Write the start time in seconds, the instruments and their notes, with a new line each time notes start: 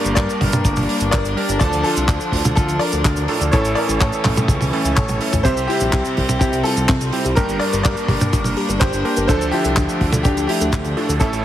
Already playing: electric grand piano G2 A#3 D4 G4 A#4, string section G3 A#3 D4, grand piano A#4 D5
0.04 analog synth bass G1, closed hi-hat, cabasa
0.15 analog synth bass G2, grand piano A#4 D5, kick, clap, closed hi-hat, cabasa
0.29 closed hi-hat, cabasa
0.41 analog synth bass G1, kick, open hi-hat, high tom
0.53 analog synth bass G2, closed hi-hat, high tom, cabasa
0.65 analog synth bass G1, kick, closed hi-hat, cabasa
0.76 analog synth bass G1, open hi-hat, high tom, cabasa
0.89 open hi-hat
1.00 analog synth bass G1, closed hi-hat, cabasa
1.11 analog synth bass G1, grand piano A#4 D5, kick, clap, closed hi-hat, cabasa
1.25 analog synth bass G1, closed hi-hat, cabasa
1.37 electric grand piano A#3 D4 G4 A#4, open hi-hat
1.48 analog synth bass G1, closed hi-hat, cabasa
1.59 analog synth bass D2, electric grand piano D3 F3 D4 F4 A5, string section F3, grand piano A4 D5, kick, closed hi-hat, cabasa
1.73 analog synth bass D2, closed hi-hat, cabasa
1.83 grand piano F4 A4, open hi-hat
1.97 analog synth bass C2, closed hi-hat, cabasa
2.08 analog synth bass D2, kick, clap, closed hi-hat, cabasa
2.20 closed hi-hat, cabasa
2.32 analog synth bass D2, kick, open hi-hat
2.45 analog synth bass D2, closed hi-hat, high tom, cabasa
2.55 analog synth bass D2, grand piano F4 A4, kick, closed hi-hat, cabasa
2.68 analog synth bass D2, closed hi-hat, cabasa
2.79 grand piano A#4 D5, open hi-hat
2.92 analog synth bass D2, closed hi-hat, cabasa
3.05 analog synth bass D2, kick, clap, closed hi-hat, cabasa
3.16 analog synth bass D2, closed hi-hat, cabasa
3.28 electric grand piano A2 A3 D4 F4 A4, open hi-hat
3.41 analog synth bass D2, closed hi-hat, cabasa
3.51 analog synth bass A1, electric grand piano A2 A3 C#4 E4 A4, string section E3 C#4, grand piano A4 C#5, kick, closed hi-hat, cabasa
3.65 analog synth bass A1, closed hi-hat, cabasa
3.75 grand piano A#4 D5, open hi-hat
3.89 analog synth bass A1, closed hi-hat, cabasa
3.99 analog synth bass A2, grand piano A4 C#5, kick, clap, closed hi-hat, cabasa
4.12 closed hi-hat, cabasa
4.25 analog synth bass A1, kick, clap, open hi-hat, high tom
4.36 analog synth bass A2, closed hi-hat, high tom, cabasa
4.48 analog synth bass C#2, kick, closed hi-hat, cabasa
4.61 analog synth bass C#2, open hi-hat, high tom, cabasa
4.73 electric grand piano A2 A3 C#4 E4 A4, open hi-hat
4.85 analog synth bass C#2, closed hi-hat, cabasa
4.95 analog synth bass A1, grand piano A4 C#5, kick, clap, closed hi-hat, high tom, cabasa
5.08 analog synth bass A1, closed hi-hat, high tom, cabasa
5.21 electric grand piano A3 C#4 E4 A4, open hi-hat
5.33 analog synth bass A1, closed hi-hat, mid tom, cabasa
5.43 analog synth bass C2, string section C3 G3 C4, electric grand piano C3 C4 G4 C5 E5, synth arpeggio sound C4, grand piano G4 C5, kick, closed hi-hat, cabasa
5.57 analog synth bass C2, closed hi-hat, cabasa
5.67 synth arpeggio sound E4, grand piano E4 G4, open hi-hat
5.80 analog synth bass A#1, synth arpeggio sound G4, closed hi-hat, cabasa
5.92 analog synth bass C2, synth arpeggio sound C4, kick, clap, closed hi-hat, cabasa
6.05 closed hi-hat, cabasa
6.17 analog synth bass C2, synth arpeggio sound E4, kick, open hi-hat
6.29 analog synth bass C2, synth arpeggio sound G4, closed hi-hat, high tom, cabasa
6.39 analog synth bass C2, synth arpeggio sound C4, grand piano E4 G4, kick, closed hi-hat, cabasa
6.53 analog synth bass C2, closed hi-hat, cabasa
6.63 synth arpeggio sound E4, grand piano F4 A4, open hi-hat
6.77 analog synth bass C2, synth arpeggio sound G4, closed hi-hat, cabasa
6.88 analog synth bass C2, synth arpeggio sound C4, kick, clap, closed hi-hat, cabasa
7.01 analog synth bass C2, closed hi-hat, cabasa
7.12 electric grand piano C4 E4 G4 C5, synth arpeggio sound E4, open hi-hat
7.24 analog synth bass C2, synth arpeggio sound G4, closed hi-hat, cabasa
7.35 analog synth bass G1, electric grand piano G2 A#3 D4 G4 A#4, string section A#3 D4, synth arpeggio sound D4, grand piano G4 A#4, kick, closed hi-hat, cabasa
7.49 analog synth bass G1, closed hi-hat, cabasa
7.59 synth arpeggio sound G4, grand piano A#4 D5, open hi-hat
7.73 analog synth bass G1, synth arpeggio sound A#4, closed hi-hat, cabasa
7.83 analog synth bass G2, synth arpeggio sound D4, grand piano A#4 D5, kick, clap, closed hi-hat, cabasa
7.97 closed hi-hat, cabasa
8.08 analog synth bass G1, synth arpeggio sound G4, kick, open hi-hat, high tom
8.21 analog synth bass G2, synth arpeggio sound A#4, closed hi-hat, high tom, cabasa
8.33 analog synth bass G1, synth arpeggio sound D4, kick, closed hi-hat, cabasa
8.44 analog synth bass G1, open hi-hat, high tom, cabasa
8.57 synth arpeggio sound G4, open hi-hat
8.69 analog synth bass G1, synth arpeggio sound A#4, closed hi-hat, cabasa
8.79 analog synth bass G1, synth arpeggio sound D4, grand piano G4 C5, kick, clap, closed hi-hat, cabasa
8.93 analog synth bass G1, closed hi-hat, cabasa
9.05 electric grand piano A#3 D4 G4 A#4, synth arpeggio sound G4, open hi-hat
9.16 analog synth bass G1, synth arpeggio sound A#4, closed hi-hat, cabasa
9.27 analog synth bass D2, electric grand piano D3 F3 A3 D4 A4, string section F3 A3, synth arpeggio sound D4, grand piano A4 C5, kick, closed hi-hat, cabasa
9.41 analog synth bass D2, closed hi-hat, cabasa
9.51 grand piano E4 G4, synth arpeggio sound F4, open hi-hat
9.64 analog synth bass C2, synth arpeggio sound A4, closed hi-hat, cabasa
9.76 analog synth bass D2, synth arpeggio sound D4, kick, clap, closed hi-hat, cabasa
9.89 closed hi-hat, cabasa
10.01 analog synth bass D2, synth arpeggio sound F4, kick, open hi-hat
10.12 analog synth bass D2, synth arpeggio sound A4, closed hi-hat, high tom, cabasa
10.23 analog synth bass D2, synth arpeggio sound D4, grand piano D4 G4, kick, closed hi-hat, cabasa
10.37 analog synth bass D2, closed hi-hat, cabasa
10.47 grand piano E4 G4, synth arpeggio sound F4, open hi-hat
10.60 analog synth bass D2, synth arpeggio sound A4, closed hi-hat, cabasa
10.73 analog synth bass D2, synth arpeggio sound D4, kick, clap, closed hi-hat, cabasa
10.84 analog synth bass D2, closed hi-hat, cabasa
10.97 electric grand piano A2 A3 D4 F4 A4, synth arpeggio sound F4, open hi-hat
11.09 analog synth bass D2, synth arpeggio sound A4, closed hi-hat, cabasa
11.19 analog synth bass A1, electric grand piano A2 A3 C#4 E4 A4, string section A3 C#4, synth arpeggio sound C#4, grand piano E4 A4, kick, closed hi-hat, cabasa
11.33 analog synth bass A1, closed hi-hat, cabasa